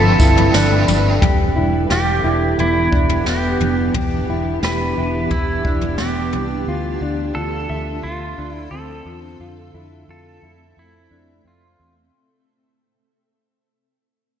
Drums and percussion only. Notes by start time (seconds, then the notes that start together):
0.20 kick, tambourine
0.37 floor tom
0.54 snare, tambourine
0.88 floor tom, tambourine
1.22 kick, floor tom
1.90 snare
2.59 floor tom
2.93 kick
3.09 floor tom
3.26 snare
3.60 floor tom
3.94 kick, floor tom
4.63 snare
5.31 kick, floor tom
5.65 kick
5.81 floor tom
5.98 snare
6.33 floor tom